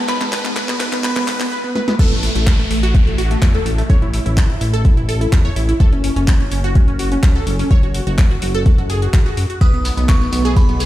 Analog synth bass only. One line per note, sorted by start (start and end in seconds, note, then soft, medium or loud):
0.08 0.39 G#1 loud
0.45 0.75 G#1 medium
0.80 1.11 G#1 medium
1.16 1.46 G#1 loud
1.99 2.30 A1 loud
2.35 2.65 A1 medium
2.71 3.01 A1 medium
3.07 3.37 A1 loud
3.42 3.59 E2 medium
3.66 3.83 A1 loud
3.90 4.20 A1 loud
4.26 4.56 A1 medium
4.61 4.92 A1 medium
4.97 5.27 A1 loud
5.32 5.50 E2 loud
5.56 5.73 A1 loud
5.80 6.11 F#1 loud
6.16 6.46 F#1 medium
6.52 6.82 F#1 medium
6.88 7.18 F#1 loud
7.23 7.40 C#2 loud
7.47 7.64 F#1 loud
7.71 8.01 F#1 loud
8.07 8.37 F#1 medium
8.42 8.73 F#1 medium
8.78 9.08 F#1 loud
9.14 9.22 F#1 medium
9.37 9.46 F#2 medium
9.61 9.92 B1 loud
9.97 10.27 B1 medium
10.33 10.63 B1 medium
10.69 10.86 B1 loud